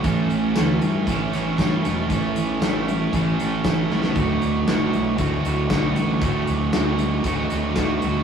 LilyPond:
<<
  \new Staff \with { instrumentName = "Steel-string acoustic guitar" } { \time 4/4 \key d \major \tempo 4 = 116 <a, e a cis' e' a'>8 <a cis' e' a'>8 <a, e a cis' e' a'>8 <a cis' e' a'>8 <a cis' e' a'>8 <a cis' e' a'>8 <a, e a cis' e' a'>8 <a cis' e' a'>8 | <a, e a cis' e' a'>8 <a cis' a'>8 <a, e a cis' e' a'>8 <a cis' e' a'>8 <a cis' e' a'>8 <a cis' e' a'>8 <a, e a cis' e' a'>8 <a cis' e' a'>8 | <d a d' fis' a'>8 <d' fis' a'>8 <d a d' fis' a'>8 <d' fis' a'>8 <a d' fis' a'>8 <d' fis' a'>8 <d a d' fis' a'>8 <d' fis' a'>8 | <d a d' fis' a'>8 <d' fis' a'>8 <d a d' fis' a'>8 <d' fis' a'>8 <a d' fis' a'>8 <d' fis' a'>8 <d a d' fis' a'>8 <d' fis' a'>8 | }
  \new Staff \with { instrumentName = "Distorted electric guitar" } { \time 4/4 \key d \major <a, e a cis' e' a'>4 <a cis' e' a'>4 <a, e a cis' e' a'>8 <a cis' e' a'>8 <a cis' e' a'>8 <a cis' e' a'>8 | <a, e a cis' e' a'>4 <a cis' e' a'>4 <a, e a cis' e' a'>8 <a cis' e' a'>8 <a cis' e' a'>8 <a cis' e' a'>8 | <d, a, d a fis'>4 <a, d a fis'>4 <d, a, d a fis'>8 <d a fis'>8 <a, d a fis'>8 <d a fis'>8 | <d, a, d a fis'>4 <a, d a fis'>4 <d, a, d a fis'>8 <d a fis'>8 <a, d a fis'>8 <d a fis'>8 | }
  \new Staff \with { instrumentName = "Overdriven electric guitar" } { \clef bass \time 4/4 \key d \major <a, e a>2 <a, e a>2 | <a, e a>2 <a, e a>2 | <d, a, d>2 <d, a, d>2 | <d, a, d>2 <d, a, d>2 | }
  \new Staff \with { instrumentName = "Fingered electric bass" } { \clef bass \time 4/4 \key d \major a,,8 a,,8 d,8 g,8 a,,8 a,,8 g,8 e,,8 | a,,8 a,,8 a,,4 a,,8 a,,8 a,,8 a,,8 | d,,8 d,,8 g,,8 b,,8 d,,8 d,,8 b,,8 a,,8 | d,,8 d,,8 d,,4 d,,8 d,,8 d,,8 d,,8 | }
  \new DrumStaff \with { instrumentName = "Drums" } \drummode { \time 4/4 <hh bd>8 hh8 <hh sn tamb>8 hh8 <hh bd>8 <hh sn>8 <hh bd sn tamb>8 hh8 | <hh bd>8 hh8 <hh sn tamb>8 hh8 <hh bd>8 hh8 <hh bd sn tamb>8 sn16 sn16 | <hh bd>8 hh8 <hh sn tamb>8 hh8 <hh bd>8 hh8 <hh bd sn tamb>8 hh8 | <hh bd>8 hh8 <hh sn tamb>8 hh8 <hh bd>8 hh8 <hh bd sn tamb>8 hh8 | }
>>